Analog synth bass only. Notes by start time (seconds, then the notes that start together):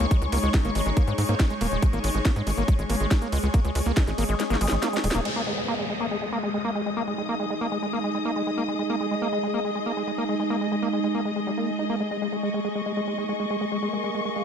0.00 C#2
0.22 C#2
0.32 C#2
0.43 C#2
0.65 G#1
0.75 G#1
0.86 G#1
1.07 G#2
1.18 G#2
1.29 G#2
1.61 D#1
1.72 D#1
1.93 G#1
2.04 G#1
2.15 G#1
2.36 G#2
2.47 G#1
2.57 G#1
2.79 G#1
2.90 G#1
3.00 G#1
3.32 C#2
3.43 C#2
3.65 C#2
3.75 C#2
3.86 C#2
4.07 G#1
4.18 G#1
4.29 G#1
4.50 G#1
4.61 G#1
4.72 G#1
5.04 D#1
5.15 D#1